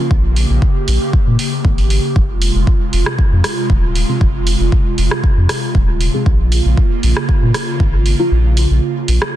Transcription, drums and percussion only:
0.11 kick
0.36 open hi-hat
0.62 kick
0.88 open hi-hat
1.13 kick
1.39 open hi-hat
1.65 kick
1.78 open hi-hat
1.90 open hi-hat
2.16 kick
2.42 open hi-hat
2.67 kick
2.93 open hi-hat
3.06 cross-stick
3.19 kick
3.44 cross-stick, open hi-hat
3.70 kick
3.95 open hi-hat
4.21 kick
4.47 open hi-hat
4.72 kick
4.98 open hi-hat
5.11 cross-stick
5.24 kick
5.49 cross-stick, open hi-hat
5.75 kick
6.01 open hi-hat
6.26 kick
6.52 open hi-hat
6.77 kick
7.03 open hi-hat
7.17 cross-stick
7.29 kick
7.54 cross-stick, open hi-hat
7.80 kick
8.06 open hi-hat
8.57 open hi-hat
9.08 open hi-hat
9.22 cross-stick

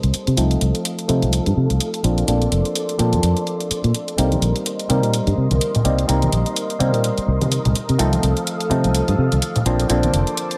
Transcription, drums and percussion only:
0.03 closed hi-hat
0.14 closed hi-hat
0.27 closed hi-hat
0.37 closed hi-hat
0.51 closed hi-hat
0.61 closed hi-hat
0.75 closed hi-hat
0.85 closed hi-hat
0.99 closed hi-hat
1.09 closed hi-hat
1.22 closed hi-hat
1.33 closed hi-hat
1.46 closed hi-hat
1.70 closed hi-hat
1.80 closed hi-hat
1.94 closed hi-hat
2.04 closed hi-hat
2.18 closed hi-hat
2.28 closed hi-hat
2.42 closed hi-hat
2.52 closed hi-hat
2.65 closed hi-hat
2.75 closed hi-hat
2.89 closed hi-hat
2.99 closed hi-hat
3.13 closed hi-hat
3.23 closed hi-hat
3.37 closed hi-hat
3.47 closed hi-hat
3.60 closed hi-hat
3.71 closed hi-hat
3.84 closed hi-hat
3.94 closed hi-hat
4.08 closed hi-hat
4.18 closed hi-hat
4.31 closed hi-hat, tambourine, high conga
4.42 closed hi-hat
4.56 closed hi-hat, tambourine
4.66 closed hi-hat
4.79 closed hi-hat, tambourine
4.90 closed hi-hat, high conga
5.03 closed hi-hat, tambourine
5.14 closed hi-hat
5.27 closed hi-hat
5.51 closed hi-hat, tambourine, high conga
5.61 closed hi-hat, tambourine
5.75 closed hi-hat, tambourine, low conga
5.85 closed hi-hat
5.99 closed hi-hat
6.09 closed hi-hat
6.22 closed hi-hat, tambourine, high conga
6.32 closed hi-hat
6.46 closed hi-hat
6.56 closed hi-hat, tambourine
6.70 closed hi-hat, tambourine
6.80 closed hi-hat, high conga
6.94 closed hi-hat, tambourine
7.04 closed hi-hat
7.18 closed hi-hat
7.41 closed hi-hat, tambourine, high conga
7.51 closed hi-hat, tambourine
7.64 closed hi-hat, tambourine, low conga
7.75 closed hi-hat
7.89 closed hi-hat, tambourine
7.99 closed hi-hat
8.12 closed hi-hat, tambourine, high conga
8.23 closed hi-hat
8.36 closed hi-hat, tambourine
8.47 closed hi-hat, tambourine
8.60 closed hi-hat, tambourine
8.70 closed hi-hat, high conga
8.84 closed hi-hat, tambourine
8.95 closed hi-hat
9.08 closed hi-hat, tambourine
9.31 closed hi-hat, tambourine, high conga
9.42 closed hi-hat, tambourine
9.56 closed hi-hat, tambourine, low conga
9.66 closed hi-hat
9.79 closed hi-hat, tambourine
9.90 closed hi-hat
10.03 closed hi-hat, tambourine, high conga
10.14 closed hi-hat
10.27 closed hi-hat, tambourine
10.37 closed hi-hat, tambourine
10.51 closed hi-hat, tambourine

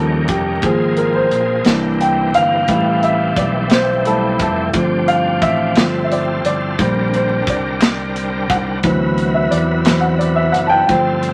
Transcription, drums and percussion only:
0.28 kick, closed hi-hat
0.62 kick, closed hi-hat
0.97 closed hi-hat
1.31 closed hi-hat
1.65 snare, closed hi-hat
2.01 closed hi-hat
2.34 closed hi-hat
2.68 kick, closed hi-hat
3.03 closed hi-hat
3.36 kick, closed hi-hat
3.70 snare, closed hi-hat
4.05 closed hi-hat
4.39 kick, closed hi-hat
4.73 kick, closed hi-hat
5.08 closed hi-hat
5.42 kick, closed hi-hat
5.76 snare, closed hi-hat
6.12 closed hi-hat
6.45 closed hi-hat
6.79 kick, closed hi-hat
7.14 closed hi-hat
7.47 kick, closed hi-hat
7.81 snare, clap, closed hi-hat
8.16 closed hi-hat
8.50 kick, closed hi-hat
8.83 kick, closed hi-hat
9.18 closed hi-hat
9.52 closed hi-hat
9.85 snare, clap, closed hi-hat
10.21 closed hi-hat
10.54 closed hi-hat
10.89 kick, closed hi-hat
11.23 closed hi-hat

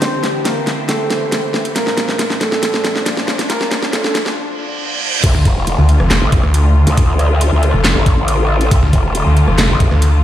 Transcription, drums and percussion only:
0.02 snare, closed hi-hat
0.24 snare, closed hi-hat
0.45 snare, closed hi-hat
0.67 snare, closed hi-hat
0.89 snare, closed hi-hat
1.10 snare, closed hi-hat
1.32 snare, closed hi-hat
1.54 snare
1.65 closed hi-hat
1.76 snare, closed hi-hat
1.87 snare
1.97 snare, closed hi-hat
2.09 snare
2.19 snare, closed hi-hat
2.30 snare
2.41 snare, closed hi-hat
2.52 snare
2.63 snare, closed hi-hat
2.74 snare
2.84 snare, closed hi-hat
2.96 snare
3.06 snare, closed hi-hat
3.17 snare
3.28 snare
3.39 snare, closed hi-hat
3.50 snare, closed hi-hat
3.61 snare
3.71 snare, closed hi-hat
3.83 snare
3.93 snare, closed hi-hat
4.04 snare
4.15 snare, closed hi-hat
4.26 snare
5.24 kick, closed hi-hat, crash
5.45 kick, closed hi-hat
5.67 closed hi-hat
5.89 closed hi-hat
6.00 cross-stick
6.11 snare, clap, closed hi-hat
6.32 kick, closed hi-hat
6.43 cross-stick
6.54 closed hi-hat
6.87 closed hi-hat
6.97 kick, closed hi-hat
7.19 cross-stick, closed hi-hat
7.41 closed hi-hat
7.63 closed hi-hat
7.84 snare, clap, closed hi-hat
8.06 kick, closed hi-hat
8.28 closed hi-hat
8.61 closed hi-hat
8.71 kick, closed hi-hat
8.93 kick, closed hi-hat
9.15 closed hi-hat
9.37 closed hi-hat
9.48 cross-stick
9.58 snare, clap, closed hi-hat
9.80 kick, closed hi-hat
9.91 cross-stick
10.02 closed hi-hat

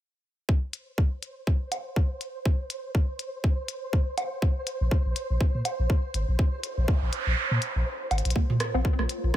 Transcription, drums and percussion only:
0.49 kick
0.73 closed hi-hat
0.98 kick
1.23 closed hi-hat
1.47 kick
1.72 closed hi-hat, low woodblock
1.96 kick
2.21 closed hi-hat
2.46 kick
2.70 closed hi-hat
2.95 kick
3.19 closed hi-hat
3.44 kick
3.68 closed hi-hat
3.93 kick
4.18 closed hi-hat, low woodblock
4.42 kick
4.67 closed hi-hat
4.91 kick
5.16 closed hi-hat
5.41 kick
5.65 closed hi-hat, low woodblock
5.90 kick
6.14 closed hi-hat
6.39 kick
6.63 closed hi-hat
6.88 kick
7.13 closed hi-hat
7.62 closed hi-hat
8.11 closed hi-hat, low woodblock
8.18 closed hi-hat
8.25 closed hi-hat
8.30 closed hi-hat
8.36 kick
8.50 mid tom
8.60 cross-stick, closed hi-hat
8.74 low woodblock
8.85 kick
8.99 cross-stick
9.09 closed hi-hat

